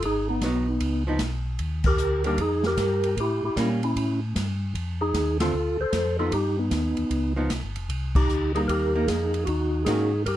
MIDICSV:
0, 0, Header, 1, 5, 480
1, 0, Start_track
1, 0, Tempo, 393701
1, 33, Time_signature, 4, 2, 24, 8
1, 12639, End_track
2, 0, Start_track
2, 0, Title_t, "Tonewheel organ"
2, 0, Program_c, 0, 16
2, 66, Note_on_c, 0, 68, 100
2, 68, Note_on_c, 0, 63, 79
2, 342, Note_off_c, 0, 68, 0
2, 343, Note_off_c, 0, 63, 0
2, 358, Note_on_c, 0, 63, 71
2, 367, Note_on_c, 0, 59, 55
2, 1262, Note_off_c, 0, 63, 0
2, 1267, Note_off_c, 0, 59, 0
2, 2273, Note_on_c, 0, 70, 116
2, 2287, Note_on_c, 0, 67, 78
2, 2722, Note_off_c, 0, 67, 0
2, 2746, Note_off_c, 0, 70, 0
2, 2760, Note_on_c, 0, 70, 97
2, 2770, Note_on_c, 0, 67, 75
2, 2913, Note_off_c, 0, 67, 0
2, 2924, Note_off_c, 0, 70, 0
2, 2933, Note_on_c, 0, 68, 95
2, 2944, Note_on_c, 0, 63, 79
2, 3219, Note_off_c, 0, 63, 0
2, 3243, Note_off_c, 0, 68, 0
2, 3249, Note_on_c, 0, 70, 125
2, 3262, Note_on_c, 0, 67, 77
2, 3845, Note_off_c, 0, 67, 0
2, 3902, Note_off_c, 0, 70, 0
2, 3906, Note_on_c, 0, 67, 104
2, 3910, Note_on_c, 0, 64, 72
2, 4182, Note_off_c, 0, 64, 0
2, 4199, Note_off_c, 0, 67, 0
2, 4207, Note_on_c, 0, 64, 63
2, 4213, Note_on_c, 0, 67, 77
2, 4351, Note_off_c, 0, 64, 0
2, 4355, Note_off_c, 0, 67, 0
2, 4365, Note_on_c, 0, 61, 62
2, 4373, Note_on_c, 0, 64, 78
2, 4502, Note_off_c, 0, 61, 0
2, 4508, Note_off_c, 0, 64, 0
2, 4682, Note_on_c, 0, 61, 55
2, 4688, Note_on_c, 0, 64, 73
2, 5119, Note_off_c, 0, 61, 0
2, 5122, Note_off_c, 0, 64, 0
2, 6110, Note_on_c, 0, 68, 98
2, 6118, Note_on_c, 0, 63, 72
2, 6552, Note_off_c, 0, 68, 0
2, 6556, Note_off_c, 0, 63, 0
2, 6589, Note_on_c, 0, 69, 96
2, 6599, Note_on_c, 0, 65, 74
2, 7037, Note_off_c, 0, 65, 0
2, 7078, Note_off_c, 0, 69, 0
2, 7081, Note_on_c, 0, 72, 108
2, 7092, Note_on_c, 0, 69, 83
2, 7518, Note_off_c, 0, 72, 0
2, 7524, Note_off_c, 0, 69, 0
2, 7551, Note_on_c, 0, 69, 91
2, 7556, Note_on_c, 0, 65, 72
2, 7704, Note_off_c, 0, 65, 0
2, 7718, Note_off_c, 0, 69, 0
2, 7721, Note_on_c, 0, 67, 101
2, 7724, Note_on_c, 0, 63, 80
2, 8008, Note_off_c, 0, 63, 0
2, 8032, Note_on_c, 0, 63, 79
2, 8036, Note_on_c, 0, 59, 61
2, 8037, Note_off_c, 0, 67, 0
2, 8938, Note_off_c, 0, 63, 0
2, 8940, Note_off_c, 0, 59, 0
2, 9949, Note_on_c, 0, 67, 101
2, 9954, Note_on_c, 0, 63, 79
2, 10393, Note_off_c, 0, 67, 0
2, 10396, Note_off_c, 0, 63, 0
2, 10428, Note_on_c, 0, 68, 92
2, 10450, Note_on_c, 0, 63, 73
2, 10503, Note_off_c, 0, 68, 0
2, 10519, Note_off_c, 0, 63, 0
2, 10582, Note_on_c, 0, 70, 109
2, 10607, Note_on_c, 0, 67, 75
2, 11047, Note_off_c, 0, 67, 0
2, 11050, Note_on_c, 0, 68, 92
2, 11078, Note_on_c, 0, 63, 81
2, 11082, Note_off_c, 0, 70, 0
2, 11508, Note_off_c, 0, 68, 0
2, 11522, Note_off_c, 0, 63, 0
2, 11524, Note_on_c, 0, 66, 92
2, 11567, Note_on_c, 0, 63, 69
2, 11985, Note_off_c, 0, 66, 0
2, 12008, Note_off_c, 0, 63, 0
2, 12008, Note_on_c, 0, 68, 89
2, 12043, Note_on_c, 0, 63, 67
2, 12468, Note_off_c, 0, 68, 0
2, 12487, Note_off_c, 0, 63, 0
2, 12508, Note_on_c, 0, 70, 90
2, 12530, Note_on_c, 0, 67, 64
2, 12639, Note_off_c, 0, 67, 0
2, 12639, Note_off_c, 0, 70, 0
2, 12639, End_track
3, 0, Start_track
3, 0, Title_t, "Hollow-body jazz guitar"
3, 0, Program_c, 1, 26
3, 524, Note_on_c, 1, 54, 65
3, 535, Note_on_c, 1, 59, 81
3, 543, Note_on_c, 1, 63, 80
3, 800, Note_off_c, 1, 54, 0
3, 805, Note_off_c, 1, 59, 0
3, 809, Note_off_c, 1, 63, 0
3, 1305, Note_on_c, 1, 53, 80
3, 1316, Note_on_c, 1, 59, 72
3, 1325, Note_on_c, 1, 63, 86
3, 1455, Note_off_c, 1, 53, 0
3, 1461, Note_off_c, 1, 59, 0
3, 1465, Note_off_c, 1, 63, 0
3, 2736, Note_on_c, 1, 51, 61
3, 2746, Note_on_c, 1, 55, 59
3, 2752, Note_on_c, 1, 58, 74
3, 2758, Note_on_c, 1, 62, 66
3, 2890, Note_off_c, 1, 51, 0
3, 2895, Note_off_c, 1, 55, 0
3, 2898, Note_off_c, 1, 58, 0
3, 2901, Note_off_c, 1, 62, 0
3, 4346, Note_on_c, 1, 55, 77
3, 4358, Note_on_c, 1, 58, 77
3, 4363, Note_on_c, 1, 61, 78
3, 4629, Note_off_c, 1, 55, 0
3, 4635, Note_off_c, 1, 58, 0
3, 4638, Note_off_c, 1, 61, 0
3, 6584, Note_on_c, 1, 50, 68
3, 6590, Note_on_c, 1, 57, 57
3, 6599, Note_on_c, 1, 60, 62
3, 6600, Note_on_c, 1, 65, 71
3, 6733, Note_off_c, 1, 50, 0
3, 6736, Note_off_c, 1, 57, 0
3, 6740, Note_off_c, 1, 60, 0
3, 6741, Note_off_c, 1, 65, 0
3, 7546, Note_on_c, 1, 53, 60
3, 7553, Note_on_c, 1, 63, 74
3, 7554, Note_on_c, 1, 59, 67
3, 7694, Note_off_c, 1, 53, 0
3, 7697, Note_off_c, 1, 63, 0
3, 7698, Note_off_c, 1, 59, 0
3, 8978, Note_on_c, 1, 53, 72
3, 8985, Note_on_c, 1, 59, 71
3, 8989, Note_on_c, 1, 63, 72
3, 9130, Note_off_c, 1, 53, 0
3, 9134, Note_off_c, 1, 59, 0
3, 9136, Note_off_c, 1, 63, 0
3, 10421, Note_on_c, 1, 55, 70
3, 10434, Note_on_c, 1, 58, 78
3, 10437, Note_on_c, 1, 63, 78
3, 10872, Note_off_c, 1, 55, 0
3, 10878, Note_off_c, 1, 58, 0
3, 10880, Note_off_c, 1, 63, 0
3, 10918, Note_on_c, 1, 58, 83
3, 10920, Note_on_c, 1, 63, 88
3, 11526, Note_off_c, 1, 58, 0
3, 11527, Note_off_c, 1, 63, 0
3, 12023, Note_on_c, 1, 58, 63
3, 12025, Note_on_c, 1, 51, 74
3, 12035, Note_on_c, 1, 61, 72
3, 12037, Note_on_c, 1, 66, 69
3, 12311, Note_off_c, 1, 58, 0
3, 12312, Note_off_c, 1, 51, 0
3, 12317, Note_off_c, 1, 61, 0
3, 12318, Note_off_c, 1, 66, 0
3, 12639, End_track
4, 0, Start_track
4, 0, Title_t, "Tonewheel organ"
4, 0, Program_c, 2, 16
4, 26, Note_on_c, 2, 32, 86
4, 495, Note_off_c, 2, 32, 0
4, 500, Note_on_c, 2, 35, 90
4, 972, Note_off_c, 2, 35, 0
4, 981, Note_on_c, 2, 37, 88
4, 1452, Note_off_c, 2, 37, 0
4, 1457, Note_on_c, 2, 35, 90
4, 1930, Note_off_c, 2, 35, 0
4, 1936, Note_on_c, 2, 39, 82
4, 2409, Note_off_c, 2, 39, 0
4, 2426, Note_on_c, 2, 38, 97
4, 2894, Note_off_c, 2, 38, 0
4, 2898, Note_on_c, 2, 41, 79
4, 3370, Note_off_c, 2, 41, 0
4, 3376, Note_on_c, 2, 43, 92
4, 3849, Note_off_c, 2, 43, 0
4, 3864, Note_on_c, 2, 45, 77
4, 4157, Note_off_c, 2, 45, 0
4, 4183, Note_on_c, 2, 45, 39
4, 4266, Note_off_c, 2, 45, 0
4, 4342, Note_on_c, 2, 46, 89
4, 4811, Note_off_c, 2, 46, 0
4, 4825, Note_on_c, 2, 45, 84
4, 5292, Note_off_c, 2, 45, 0
4, 5305, Note_on_c, 2, 43, 94
4, 5773, Note_off_c, 2, 43, 0
4, 5784, Note_on_c, 2, 41, 82
4, 6252, Note_off_c, 2, 41, 0
4, 6264, Note_on_c, 2, 39, 89
4, 6731, Note_off_c, 2, 39, 0
4, 6750, Note_on_c, 2, 38, 75
4, 7040, Note_off_c, 2, 38, 0
4, 7062, Note_on_c, 2, 38, 38
4, 7145, Note_off_c, 2, 38, 0
4, 7221, Note_on_c, 2, 41, 93
4, 7690, Note_off_c, 2, 41, 0
4, 7704, Note_on_c, 2, 43, 90
4, 8172, Note_off_c, 2, 43, 0
4, 8178, Note_on_c, 2, 39, 91
4, 8474, Note_off_c, 2, 39, 0
4, 8509, Note_on_c, 2, 39, 37
4, 8591, Note_off_c, 2, 39, 0
4, 8660, Note_on_c, 2, 37, 86
4, 9130, Note_off_c, 2, 37, 0
4, 9142, Note_on_c, 2, 35, 98
4, 9301, Note_off_c, 2, 35, 0
4, 9311, Note_on_c, 2, 31, 57
4, 9469, Note_on_c, 2, 29, 66
4, 9470, Note_off_c, 2, 31, 0
4, 9618, Note_off_c, 2, 29, 0
4, 9619, Note_on_c, 2, 36, 76
4, 10090, Note_off_c, 2, 36, 0
4, 10105, Note_on_c, 2, 38, 92
4, 10574, Note_off_c, 2, 38, 0
4, 10588, Note_on_c, 2, 39, 77
4, 11056, Note_off_c, 2, 39, 0
4, 11066, Note_on_c, 2, 41, 95
4, 11535, Note_off_c, 2, 41, 0
4, 11542, Note_on_c, 2, 39, 86
4, 12014, Note_off_c, 2, 39, 0
4, 12028, Note_on_c, 2, 44, 88
4, 12498, Note_off_c, 2, 44, 0
4, 12502, Note_on_c, 2, 43, 79
4, 12639, Note_off_c, 2, 43, 0
4, 12639, End_track
5, 0, Start_track
5, 0, Title_t, "Drums"
5, 29, Note_on_c, 9, 36, 20
5, 29, Note_on_c, 9, 51, 57
5, 150, Note_off_c, 9, 36, 0
5, 151, Note_off_c, 9, 51, 0
5, 504, Note_on_c, 9, 36, 24
5, 504, Note_on_c, 9, 38, 59
5, 505, Note_on_c, 9, 44, 44
5, 505, Note_on_c, 9, 51, 63
5, 626, Note_off_c, 9, 36, 0
5, 626, Note_off_c, 9, 38, 0
5, 627, Note_off_c, 9, 44, 0
5, 627, Note_off_c, 9, 51, 0
5, 980, Note_on_c, 9, 51, 61
5, 981, Note_on_c, 9, 36, 18
5, 1102, Note_off_c, 9, 51, 0
5, 1103, Note_off_c, 9, 36, 0
5, 1449, Note_on_c, 9, 38, 72
5, 1450, Note_on_c, 9, 44, 56
5, 1450, Note_on_c, 9, 51, 64
5, 1458, Note_on_c, 9, 36, 20
5, 1571, Note_off_c, 9, 38, 0
5, 1572, Note_off_c, 9, 44, 0
5, 1572, Note_off_c, 9, 51, 0
5, 1580, Note_off_c, 9, 36, 0
5, 1935, Note_on_c, 9, 51, 54
5, 1936, Note_on_c, 9, 36, 19
5, 2057, Note_off_c, 9, 51, 0
5, 2058, Note_off_c, 9, 36, 0
5, 2240, Note_on_c, 9, 49, 79
5, 2247, Note_on_c, 9, 36, 85
5, 2362, Note_off_c, 9, 49, 0
5, 2369, Note_off_c, 9, 36, 0
5, 2414, Note_on_c, 9, 44, 66
5, 2535, Note_off_c, 9, 44, 0
5, 2732, Note_on_c, 9, 51, 49
5, 2854, Note_off_c, 9, 51, 0
5, 2898, Note_on_c, 9, 36, 28
5, 2899, Note_on_c, 9, 51, 63
5, 3020, Note_off_c, 9, 36, 0
5, 3021, Note_off_c, 9, 51, 0
5, 3211, Note_on_c, 9, 38, 68
5, 3333, Note_off_c, 9, 38, 0
5, 3381, Note_on_c, 9, 36, 23
5, 3381, Note_on_c, 9, 38, 69
5, 3382, Note_on_c, 9, 44, 56
5, 3382, Note_on_c, 9, 51, 68
5, 3503, Note_off_c, 9, 36, 0
5, 3503, Note_off_c, 9, 38, 0
5, 3504, Note_off_c, 9, 44, 0
5, 3504, Note_off_c, 9, 51, 0
5, 3700, Note_on_c, 9, 51, 51
5, 3822, Note_off_c, 9, 51, 0
5, 3864, Note_on_c, 9, 36, 26
5, 3870, Note_on_c, 9, 51, 58
5, 3986, Note_off_c, 9, 36, 0
5, 3992, Note_off_c, 9, 51, 0
5, 4345, Note_on_c, 9, 36, 26
5, 4350, Note_on_c, 9, 38, 63
5, 4351, Note_on_c, 9, 44, 52
5, 4351, Note_on_c, 9, 51, 65
5, 4467, Note_off_c, 9, 36, 0
5, 4472, Note_off_c, 9, 38, 0
5, 4473, Note_off_c, 9, 44, 0
5, 4473, Note_off_c, 9, 51, 0
5, 4667, Note_on_c, 9, 51, 46
5, 4789, Note_off_c, 9, 51, 0
5, 4827, Note_on_c, 9, 36, 21
5, 4834, Note_on_c, 9, 51, 62
5, 4949, Note_off_c, 9, 36, 0
5, 4956, Note_off_c, 9, 51, 0
5, 5309, Note_on_c, 9, 36, 27
5, 5313, Note_on_c, 9, 38, 61
5, 5314, Note_on_c, 9, 44, 59
5, 5314, Note_on_c, 9, 51, 73
5, 5430, Note_off_c, 9, 36, 0
5, 5435, Note_off_c, 9, 38, 0
5, 5436, Note_off_c, 9, 44, 0
5, 5436, Note_off_c, 9, 51, 0
5, 5787, Note_on_c, 9, 36, 24
5, 5794, Note_on_c, 9, 51, 55
5, 5909, Note_off_c, 9, 36, 0
5, 5916, Note_off_c, 9, 51, 0
5, 6268, Note_on_c, 9, 36, 24
5, 6270, Note_on_c, 9, 38, 62
5, 6271, Note_on_c, 9, 44, 50
5, 6271, Note_on_c, 9, 51, 67
5, 6389, Note_off_c, 9, 36, 0
5, 6392, Note_off_c, 9, 38, 0
5, 6393, Note_off_c, 9, 44, 0
5, 6393, Note_off_c, 9, 51, 0
5, 6585, Note_on_c, 9, 38, 76
5, 6586, Note_on_c, 9, 51, 69
5, 6707, Note_off_c, 9, 38, 0
5, 6708, Note_off_c, 9, 51, 0
5, 7224, Note_on_c, 9, 36, 21
5, 7224, Note_on_c, 9, 38, 70
5, 7225, Note_on_c, 9, 44, 58
5, 7225, Note_on_c, 9, 51, 67
5, 7346, Note_off_c, 9, 36, 0
5, 7346, Note_off_c, 9, 38, 0
5, 7347, Note_off_c, 9, 44, 0
5, 7347, Note_off_c, 9, 51, 0
5, 7702, Note_on_c, 9, 36, 24
5, 7704, Note_on_c, 9, 51, 64
5, 7824, Note_off_c, 9, 36, 0
5, 7826, Note_off_c, 9, 51, 0
5, 8181, Note_on_c, 9, 38, 63
5, 8182, Note_on_c, 9, 36, 23
5, 8183, Note_on_c, 9, 44, 52
5, 8183, Note_on_c, 9, 51, 64
5, 8303, Note_off_c, 9, 38, 0
5, 8304, Note_off_c, 9, 36, 0
5, 8305, Note_off_c, 9, 44, 0
5, 8305, Note_off_c, 9, 51, 0
5, 8495, Note_on_c, 9, 51, 47
5, 8617, Note_off_c, 9, 51, 0
5, 8661, Note_on_c, 9, 36, 23
5, 8665, Note_on_c, 9, 51, 57
5, 8783, Note_off_c, 9, 36, 0
5, 8787, Note_off_c, 9, 51, 0
5, 9141, Note_on_c, 9, 38, 65
5, 9142, Note_on_c, 9, 36, 23
5, 9143, Note_on_c, 9, 44, 64
5, 9143, Note_on_c, 9, 51, 64
5, 9263, Note_off_c, 9, 38, 0
5, 9264, Note_off_c, 9, 36, 0
5, 9265, Note_off_c, 9, 44, 0
5, 9265, Note_off_c, 9, 51, 0
5, 9456, Note_on_c, 9, 51, 47
5, 9578, Note_off_c, 9, 51, 0
5, 9623, Note_on_c, 9, 36, 20
5, 9626, Note_on_c, 9, 51, 65
5, 9745, Note_off_c, 9, 36, 0
5, 9748, Note_off_c, 9, 51, 0
5, 9939, Note_on_c, 9, 36, 90
5, 9945, Note_on_c, 9, 49, 76
5, 10061, Note_off_c, 9, 36, 0
5, 10067, Note_off_c, 9, 49, 0
5, 10110, Note_on_c, 9, 44, 52
5, 10232, Note_off_c, 9, 44, 0
5, 10430, Note_on_c, 9, 51, 47
5, 10552, Note_off_c, 9, 51, 0
5, 10587, Note_on_c, 9, 36, 25
5, 10597, Note_on_c, 9, 51, 63
5, 10709, Note_off_c, 9, 36, 0
5, 10719, Note_off_c, 9, 51, 0
5, 11067, Note_on_c, 9, 36, 27
5, 11071, Note_on_c, 9, 38, 68
5, 11072, Note_on_c, 9, 44, 58
5, 11072, Note_on_c, 9, 51, 66
5, 11189, Note_off_c, 9, 36, 0
5, 11193, Note_off_c, 9, 38, 0
5, 11194, Note_off_c, 9, 44, 0
5, 11194, Note_off_c, 9, 51, 0
5, 11386, Note_on_c, 9, 51, 48
5, 11508, Note_off_c, 9, 51, 0
5, 11545, Note_on_c, 9, 36, 19
5, 11545, Note_on_c, 9, 51, 56
5, 11667, Note_off_c, 9, 36, 0
5, 11667, Note_off_c, 9, 51, 0
5, 12023, Note_on_c, 9, 38, 65
5, 12024, Note_on_c, 9, 44, 52
5, 12024, Note_on_c, 9, 51, 73
5, 12025, Note_on_c, 9, 36, 23
5, 12145, Note_off_c, 9, 38, 0
5, 12146, Note_off_c, 9, 44, 0
5, 12146, Note_off_c, 9, 51, 0
5, 12147, Note_off_c, 9, 36, 0
5, 12506, Note_on_c, 9, 36, 22
5, 12512, Note_on_c, 9, 51, 66
5, 12628, Note_off_c, 9, 36, 0
5, 12634, Note_off_c, 9, 51, 0
5, 12639, End_track
0, 0, End_of_file